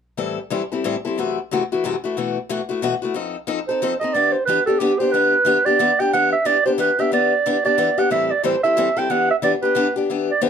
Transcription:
0.17 A2 E3 G3 C4 E4 A4
0.50 A2 E3 G3 C4 E4 A4
0.72 G3 C4 E4 A4
0.84 A2 E3 G3 C4 E4 A4
1.05 G3 C4 E4 A4
1.18 F#2 C3 E3 A3 E4 F#4
1.51 F#2 C3 E3 A3 E4 F#4
1.72 E3 A3 E4 F#4
1.84 F#2 C3 E3 A3 E4 F#4
2.04 E3 A3 E4 F#4
2.17 B2 E3 A3 E4 F#4
2.49 B2 E3 A3 E4 F#4
2.69 A3 E4 F#4
2.82 B2 E3 A3 E4 F#4
3.02 A3 E4 F#4
3.14 F3 C4 D#4 A4
3.47 F3 C4 D#4 A4
3.68 C4 D#4 A4 C5
3.82 F3 C4 D#4 A4
4.00 D#4 A4 D#5
4.04 C4
4.13 E3 B3 D4 G4 D5
4.32 C5
4.45 E3 B3 D4 G4 B4
4.66 B3 D4 G4 A4
4.79 E3 B3 D4 G4
4.99 B3 D4 G4 C5
5.12 E3 B3 D4 G4 B4
5.45 E3 B3 D4 G4
5.65 B3 D4 G4 D5
5.79 E3 B3 D4 G4
6.00 B3 D4 G4 G5
6.13 E3 B3 D4 G4 F#5
6.32 E5
6.45 E3 B3 D4 G4 D5
6.66 B3 D4 G4 C5
6.78 E3 B3 D4 G4 B4
6.99 B3 D4 G4 E5
7.12 E3 B3 D4 G4 D5
7.46 E3 B3 D4 G4
7.65 B3 D4 G4 D5
7.78 E3 B3 D4 G4
7.98 B3 D4 G4 F#5
8.10 A2 E3 G3 C4 E4 A4 E5
8.31 D5
8.43 A2 E3 G3 C4 E4 A4 C5
8.63 G3 C4 E4 A4 E5
8.77 A2 E3 G3 C4 E4 A4
8.97 G3 C4 E4 A4 G5
9.10 E3 B3 D4 G4 F#5
9.30 E5
9.42 E3 B3 D4 G4 D5
9.62 B3 D4 G4 B4
9.75 E3 B3 D4 G4
9.96 B3 D4 G4
10.10 E3 B3 D4 G4
10.31 D5
10.41 E3 B3 D4 G4 C5

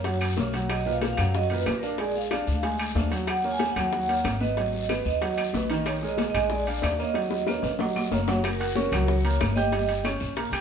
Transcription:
Already playing: F#2 C#5
0.04 F#3 F#4 F#5, high bongo, high conga, high timbale, long guiro
0.21 high conga, high timbale, claves
0.37 B1 A#3 A#4 C#5, high bongo, low bongo, high conga, low timbale, short guiro
0.53 F#3 F#4 F#5, high bongo, high timbale, short guiro
0.69 D#5, high bongo, high conga, high timbale, long guiro, claves
0.85 A#2 A#4 B4, high bongo, high conga
0.92 F5
1.01 high bongo, high conga, high timbale, low timbale, short guiro
1.13 F5
1.17 F#2 F#3 F#4 F#5, high bongo, high conga, high timbale, short guiro, claves
1.34 F#3 F#4 D#5 F#5, high bongo, high conga, long guiro
1.50 A#2 A#4 B4, high conga, high timbale
1.57 B4
1.66 A#1, high bongo, low bongo, high conga, high timbale, low timbale, short guiro, claves
1.79 A#4, short guiro
1.83 D4 D5 F5, high bongo
1.98 G#3 G#4 D5 G#5, high bongo, high conga, high timbale, long guiro
2.15 F5, high bongo, high conga
2.31 D4 D5 F5, high bongo, high conga, high timbale, low timbale, short guiro, claves
2.47 D2, high bongo, high conga, short guiro
2.63 G#3 G#4 G#5, high bongo, high conga, high timbale, long guiro
2.79 high conga, high timbale, claves
2.95 D#2 D4 D5 F5, high bongo, low bongo, high conga, low timbale, short guiro
3.11 F#3 F#4 F#5, high bongo, high timbale, short guiro
3.27 F#5, high bongo, high conga, high timbale, long guiro, claves
3.44 A#3 A#4 C#5, high bongo, high conga
3.51 G#5
3.59 high bongo, high conga, high timbale, low timbale, short guiro
3.72 F#5
3.76 D#2 F#3 F#4 F#5, high bongo, high conga, high timbale, short guiro, claves
3.92 F#3 F#4 F#5, high bongo, high conga, long guiro
4.08 A#3 A#4 C#5, high conga, high timbale
4.24 G#1, high bongo, low bongo, high conga, high timbale, low timbale, short guiro, claves
4.40 B3 B4 D#5, high bongo, high conga, short guiro
4.57 F#3 F#4 F#5, high bongo, high conga, high timbale, long guiro
4.73 high bongo, high conga
4.89 B3 B4 D#5, high bongo, high conga, high timbale, low timbale, short guiro, claves
5.05 D#2 D#5, high bongo, high conga, short guiro
5.21 F#3 F#4 F#5, high bongo, high conga, high timbale, long guiro
5.37 high conga, high timbale, claves
5.53 A#1 B3 B4 D#5, high bongo, low bongo, high conga, low timbale, short guiro
5.70 D#3 D#4 D#5, high bongo, high timbale, short guiro
5.86 C#5, high bongo, high timbale, long guiro, claves
6.02 G#3 G#4 A#4, high bongo, high conga
6.08 D#5
6.18 high bongo, high conga, high timbale, low timbale, short guiro
6.30 D#5
6.34 A#1 G#3 G#4 G#5, high bongo, high timbale, short guiro, claves
6.50 G#3 G#4 D5 G#5, high bongo, high conga, long guiro
6.67 D4 D5 F5, high conga, high timbale
6.82 D#2, high bongo, low bongo, high conga, high timbale, low timbale, short guiro, claves
6.99 A#3 A#4 C#5 D#5, high bongo, short guiro
7.14 F#3 F#4 F#5, high bongo, high conga, high timbale, long guiro
7.31 high bongo, high conga
7.47 A#3 A#4 C#5, high bongo, high conga, high timbale, short guiro, claves
7.63 A#1, low bongo, high conga, high timbale, short guiro
7.79 F#3 F#4 F#5, low bongo, high conga, low timbale, long guiro
7.96 high conga, low timbale, claves
8.11 F#1 A#3 A#4 C#5, low bongo, high conga, low timbale, short guiro
8.28 F#3 F#4 F#5, low bongo, high conga, low timbale, short guiro
8.44 A#4, high bongo, high conga, high timbale, long guiro, claves
8.59 F#4 A#4 F#5 F#6, high conga, high timbale
8.75 C#4 C#5 C#6, high bongo, high conga, short guiro
8.92 C#2 F#3 F#4 F#5, high conga, low conga, high timbale, short guiro, claves
9.07 C#5, high bongo, high conga, long guiro
9.24 A#3 A#4 A#5, high conga, high timbale
9.40 G1, high bongo, low bongo, high conga, high timbale, low timbale, short guiro, claves
9.55 G4 D#5 G5 G6, high conga, short guiro
9.72 G3 G4 G5, high bongo, high conga, high timbale, long guiro
9.88 high conga, high timbale
10.04 C#4 C#5 C#6, high bongo, high conga, high timbale, short guiro, claves
10.20 A#1, high bongo, high conga, short guiro
10.36 A#3 A#4 A#5, high bongo, high conga, high timbale, long guiro
10.52 A#1 G4 G5 G6, high bongo, high conga, high timbale, claves

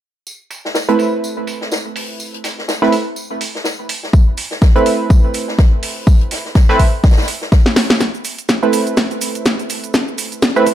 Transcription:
0.27 tambourine
0.51 open hi-hat, tambourine
0.65 snare
0.74 snare, tambourine
0.89 A3 C4 E4 B4, closed hi-hat
0.99 open hi-hat, tambourine
1.24 tambourine
1.47 open hi-hat, tambourine
1.61 snare
1.72 snare, tambourine
1.96 open hi-hat
2.20 tambourine
2.34 closed hi-hat
2.44 snare, open hi-hat, tambourine
2.58 snare
2.68 snare, tambourine
2.82 A3 C4 E4 B4, snare
2.92 open hi-hat, tambourine
3.16 tambourine
3.41 open hi-hat, tambourine
3.55 snare
3.64 snare, tambourine
3.89 open hi-hat, tambourine
4.03 snare
4.13 kick, tambourine
4.37 open hi-hat, tambourine
4.51 snare
4.62 kick, snare, tambourine
4.76 A3 C4 E4 B4, closed hi-hat
4.86 open hi-hat, tambourine
5.10 kick, tambourine
5.34 open hi-hat, tambourine
5.48 snare
5.58 kick, snare, tambourine
5.83 open hi-hat
6.07 kick, tambourine
6.21 closed hi-hat
6.31 snare, open hi-hat, tambourine
6.45 snare
6.55 kick, snare, tambourine
6.69 A3 C4 E4 B4, snare
6.80 kick, open hi-hat, tambourine
7.04 kick, snare, tambourine
7.11 snare, tambourine
7.17 snare, tambourine
7.22 snare, tambourine
7.28 open hi-hat, tambourine
7.41 snare
7.52 kick, snare, tambourine
7.66 snare
7.76 snare, open hi-hat
7.90 snare
8.00 kick, snare, closed hi-hat, shaker
8.14 shaker
8.25 open hi-hat, shaker
8.38 closed hi-hat, shaker
8.49 kick, snare, closed hi-hat, shaker
8.63 A3 C4 E4 B4, shaker
8.73 open hi-hat, shaker
8.87 closed hi-hat, shaker
8.97 kick, snare, closed hi-hat, shaker
9.11 closed hi-hat, shaker
9.21 open hi-hat, shaker
9.35 closed hi-hat, shaker
9.46 kick, snare, closed hi-hat, shaker
9.59 closed hi-hat, shaker
9.70 open hi-hat, shaker
9.84 closed hi-hat, shaker
9.94 kick, snare, closed hi-hat, shaker
10.08 shaker
10.18 open hi-hat, shaker
10.32 closed hi-hat, shaker
10.42 kick, snare, closed hi-hat, shaker
10.56 A3 C4 E4 B4, shaker
10.67 kick, open hi-hat, shaker

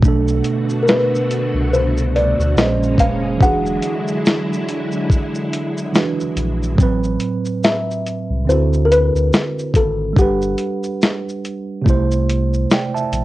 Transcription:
0.00 B1 B2 D3 A3 F#4, kick
0.04 D4 A4, shaker
0.28 shaker
0.44 closed hi-hat, shaker
0.69 shaker
0.83 A#4
0.88 B4, snare, shaker
1.15 shaker
1.31 closed hi-hat, shaker
1.54 C2
1.73 C5, shaker
1.98 shaker
2.16 D5, closed hi-hat, shaker
2.39 D2, shaker
2.56 A#1 A#2 C#3 G#3 A#3 C4 C#4 D#5, snare, shaker
2.60 C5
2.66 C#4
2.83 shaker
2.98 F1 F5, kick, closed hi-hat, shaker
3.36 E3 D4
3.40 E1 D3 F#3 E4 F#4 F#5, kick, shaker
3.44 G#4
3.66 shaker
3.82 closed hi-hat, shaker
4.08 shaker
4.26 snare, shaker
4.53 shaker
4.69 closed hi-hat, shaker
4.92 shaker
5.10 kick, shaker
5.35 shaker
5.53 closed hi-hat, shaker
5.78 shaker
5.93 E3 D4 F#4, snare, shaker
5.97 B4
6.20 shaker
6.37 A#1, closed hi-hat, shaker
6.63 shaker
6.74 A2 F#3, kick
6.79 A1 C4, shaker
6.83 B4
7.04 shaker
7.20 closed hi-hat, shaker
7.45 shaker
7.64 E5, snare, shaker
7.91 shaker
8.06 closed hi-hat, shaker
8.30 C2
8.45 D2 D3 C4
8.49 E4 F#4 C5, shaker
8.53 A4
8.73 shaker
8.85 A#4
8.92 B4, closed hi-hat, shaker
9.14 D2, shaker
9.33 snare, shaker
9.59 shaker
9.74 G#1 A4, kick, closed hi-hat, shaker
10.13 G1 G3 D4, kick
10.18 G4 B4 F#5, shaker
10.42 shaker
10.58 closed hi-hat, shaker
10.83 shaker
11.02 snare, shaker
11.29 shaker
11.45 closed hi-hat, shaker
11.82 C3 A3
11.86 C2 E4 C5, kick, shaker
12.12 shaker
12.30 closed hi-hat, shaker
12.54 shaker
12.71 D5 G5, snare, shaker
12.95 E5 A5, shaker
13.12 A#1, closed hi-hat, shaker

